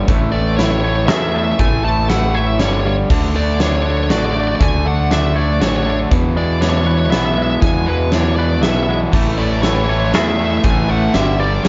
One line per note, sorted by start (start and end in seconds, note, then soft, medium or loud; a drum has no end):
0.07 1.08 A1 loud
0.07 0.32 A2 loud
0.07 0.32 E3 loud
0.07 0.32 A3 loud
0.07 kick loud
0.07 closed hi-hat medium
0.32 0.57 A2 medium
0.32 0.57 E3 loud
0.32 0.58 A3 medium
0.32 0.56 D5 medium
0.57 0.82 A2 loud
0.57 0.82 E3 loud
0.57 0.82 A3 loud
0.57 1.84 E4 medium
0.57 0.64 C#5 medium
0.57 snare medium
0.57 closed hi-hat medium
0.64 0.71 C#5 medium
0.71 0.79 C#5 medium
0.81 1.08 A2 medium
0.81 1.08 E3 medium
0.81 1.09 A3 loud
0.81 0.88 C#5 medium
0.81 2.10 C#5 medium
0.89 0.96 C#5 medium
0.96 1.04 C#5 medium
1.07 1.52 E2 loud
1.07 1.32 A2 medium
1.07 1.33 E3 loud
1.07 1.33 A3 loud
1.07 2.35 G#4 medium
1.07 1.14 E5 medium
1.07 snare loud
1.07 closed hi-hat medium
1.14 1.21 E5 medium
1.21 1.29 E5 medium
1.29 1.36 E5 medium
1.34 1.58 A2 medium
1.34 1.58 E3 medium
1.34 1.59 A3 loud
1.34 1.44 E5 medium
1.44 1.52 E5 medium
1.52 1.60 E5 medium
1.59 2.59 A1 loud
1.59 1.84 A2 loud
1.59 1.84 E3 loud
1.59 1.84 A3 loud
1.59 1.84 G#5 loud
1.59 kick loud
1.59 closed hi-hat medium
1.84 2.08 A2 medium
1.84 2.09 E3 medium
1.84 2.09 A3 medium
1.84 2.09 A5 loud
2.09 2.33 A2 loud
2.09 2.34 E3 loud
2.09 2.35 A3 loud
2.09 2.60 E4 medium
2.09 2.35 F#5 loud
2.09 snare medium
2.09 closed hi-hat medium
2.35 2.58 A2 loud
2.35 2.59 E3 medium
2.35 2.59 A3 medium
2.35 2.60 C#5 medium
2.35 2.60 E5 medium
2.59 3.03 G1 loud
2.59 2.84 G2 medium
2.59 2.85 D3 loud
2.59 2.85 G3 loud
2.59 2.66 C#5 medium
2.59 snare medium
2.59 closed hi-hat medium
2.66 2.73 C#5 medium
2.73 2.80 C#5 medium
2.80 2.87 C#5 medium
2.85 3.09 G2 medium
2.85 3.09 D3 medium
2.85 3.09 G3 medium
2.85 2.94 C#5 medium
3.10 4.11 D2 loud
3.10 3.35 D3 loud
3.10 3.35 A3 loud
3.10 3.36 D4 loud
3.10 kick loud
3.10 crash loud
3.35 3.60 D3 medium
3.35 3.60 A3 medium
3.35 3.61 D4 medium
3.35 3.59 D5 medium
3.60 3.84 D3 medium
3.60 3.84 A3 medium
3.60 3.85 D4 loud
3.60 3.67 C#5 medium
3.60 snare medium
3.60 closed hi-hat medium
3.67 3.75 C#5 medium
3.76 3.82 C#5 medium
3.83 4.08 D3 medium
3.83 4.09 A3 loud
3.83 4.10 D4 loud
3.83 3.90 C#5 medium
3.91 3.97 C#5 medium
3.98 4.04 C#5 medium
4.04 4.10 C#5 medium
4.10 4.54 A1 medium
4.10 4.34 D3 medium
4.10 4.34 A3 loud
4.10 4.35 D4 loud
4.10 5.36 F#4 medium
4.10 4.18 D5 medium
4.10 snare medium
4.10 closed hi-hat medium
4.19 4.25 D5 medium
4.25 4.32 D5 medium
4.33 4.59 D3 medium
4.33 4.59 A3 medium
4.33 4.60 D4 medium
4.33 4.40 D5 medium
4.41 4.48 D5 medium
4.48 4.55 D5 medium
4.56 4.63 D5 medium
4.60 5.61 D2 loud
4.60 4.84 D3 loud
4.60 4.85 A3 loud
4.60 4.86 D4 loud
4.60 4.87 G#5 loud
4.60 kick loud
4.60 closed hi-hat medium
4.85 5.09 D3 medium
4.85 5.10 A3 medium
4.85 5.11 D4 medium
4.85 5.13 F#5 medium
5.11 5.35 D3 loud
5.11 5.35 A3 loud
5.11 5.36 D4 loud
5.11 5.37 E5 loud
5.11 snare medium
5.11 closed hi-hat medium
5.36 5.59 D3 medium
5.36 5.60 A3 loud
5.36 5.61 D4 loud
5.36 6.11 C#5 medium
5.36 5.62 D5 medium
5.60 6.05 A1 loud
5.60 5.85 D3 loud
5.60 5.86 A3 loud
5.60 5.87 D4 loud
5.60 6.11 F#4 medium
5.60 5.68 C#5 medium
5.60 snare medium
5.60 closed hi-hat medium
5.69 5.76 C#5 medium
5.76 5.83 C#5 medium
5.83 6.10 D3 medium
5.83 5.90 C#5 medium
5.87 6.10 A3 medium
5.87 6.14 D4 medium
5.87 5.98 C#5 medium
6.11 6.36 E2 loud
6.11 7.12 E2 loud
6.11 6.36 B2 loud
6.11 6.37 E3 loud
6.11 kick loud
6.11 closed hi-hat medium
6.36 6.60 E2 medium
6.36 6.60 B2 loud
6.36 6.62 E3 loud
6.36 7.37 G#3 medium
6.36 6.62 D5 medium
6.61 6.85 E2 loud
6.61 6.85 B2 loud
6.61 6.87 E3 loud
6.61 7.87 D4 medium
6.61 6.69 C#5 medium
6.61 snare medium
6.61 closed hi-hat medium
6.70 6.77 C#5 medium
6.78 6.85 C#5 medium
6.85 7.10 E2 medium
6.85 7.11 B2 loud
6.85 7.12 E3 loud
6.85 8.12 B4 medium
6.85 6.91 C#5 medium
6.92 6.98 C#5 medium
6.99 7.06 C#5 medium
7.06 7.11 C#5 medium
7.11 7.56 B1 loud
7.11 7.36 E2 medium
7.11 7.37 B2 loud
7.11 7.38 E3 loud
7.11 8.38 B3 medium
7.11 7.19 E5 medium
7.11 snare medium
7.11 closed hi-hat medium
7.19 7.25 E5 medium
7.26 7.34 E5 medium
7.34 7.61 E2 medium
7.34 7.62 B2 medium
7.34 7.63 E3 medium
7.34 7.88 G#3 medium
7.34 7.42 E5 medium
7.43 7.50 E5 medium
7.50 7.58 E5 medium
7.62 8.63 E2 loud
7.62 7.86 E2 loud
7.62 7.87 B2 medium
7.62 7.88 E3 loud
7.62 7.88 G#5 loud
7.62 kick loud
7.62 closed hi-hat medium
7.86 8.12 E2 medium
7.86 8.12 B2 medium
7.86 8.13 E3 loud
7.86 8.87 G#3 medium
7.86 8.13 B4 medium
8.12 8.36 E2 medium
8.12 8.37 B2 loud
8.12 8.38 E3 loud
8.12 9.14 D4 medium
8.12 8.36 C#5 medium
8.12 snare medium
8.12 closed hi-hat medium
8.36 8.62 E2 loud
8.36 8.62 B2 medium
8.36 8.63 E3 loud
8.36 9.14 B4 medium
8.36 8.62 D5 loud
8.63 9.07 B1 medium
8.63 8.87 E2 loud
8.63 8.88 B2 medium
8.63 8.88 E3 medium
8.63 9.13 B3 medium
8.63 8.69 E5 medium
8.63 snare medium
8.63 closed hi-hat medium
8.70 8.76 E5 medium
8.77 8.83 E5 medium
8.83 8.90 E5 medium
8.88 9.12 E2 medium
8.88 9.12 B2 medium
8.88 9.12 E3 medium
8.88 9.13 G#3 medium
8.88 8.98 E5 medium
9.13 10.14 A1 loud
9.13 9.37 A2 loud
9.13 9.38 E3 loud
9.13 9.38 A3 loud
9.13 kick loud
9.13 crash loud
9.38 9.62 A2 medium
9.38 9.62 E3 medium
9.38 9.63 A3 loud
9.38 9.62 D5 medium
9.62 9.87 A2 loud
9.62 9.87 E3 loud
9.62 9.88 A3 loud
9.62 10.89 E4 medium
9.62 9.69 C#5 medium
9.62 snare medium
9.62 closed hi-hat medium
9.69 9.76 C#5 medium
9.77 9.84 C#5 medium
9.85 10.12 A2 medium
9.85 10.13 E3 loud
9.85 9.91 C#5 medium
9.89 10.13 A3 loud
9.89 11.14 C#5 medium
9.89 9.99 C#5 medium
10.00 10.06 C#5 medium
10.06 10.14 C#5 medium
10.13 10.58 E2 loud
10.13 10.38 A2 medium
10.13 10.38 E3 loud
10.13 10.39 A3 loud
10.13 11.14 G#4 medium
10.13 10.22 E5 loud
10.13 snare medium
10.13 closed hi-hat medium
10.22 10.28 E5 medium
10.29 10.36 E5 medium
10.36 10.63 A2 medium
10.36 10.63 E3 medium
10.36 10.64 A3 medium
10.36 10.44 E5 medium
10.45 10.50 E5 medium
10.51 10.57 E5 medium
10.58 10.65 E5 medium
10.64 11.08 A1 loud
10.64 10.88 A2 loud
10.64 10.88 E3 loud
10.64 10.89 A3 loud
10.64 10.90 G#5 loud
10.64 kick loud
10.64 closed hi-hat medium
10.89 11.13 A2 medium
10.89 11.13 E3 medium
10.89 11.13 A3 loud
10.89 11.16 F#5 medium
11.14 11.58 G1 loud
11.14 11.39 G2 medium
11.14 11.39 D3 loud
11.14 11.39 G3 loud
11.14 11.40 E5 loud
11.14 snare medium
11.14 closed hi-hat medium
11.40 11.63 G2 medium
11.40 11.63 D3 medium
11.40 11.64 G3 loud
11.40 11.65 D5 medium
11.40 11.63 D5 medium
11.64 11.68 G2 loud
11.64 11.68 D3 loud
11.64 11.68 G3 medium
11.64 11.68 C#5 medium
11.64 snare medium
11.64 closed hi-hat medium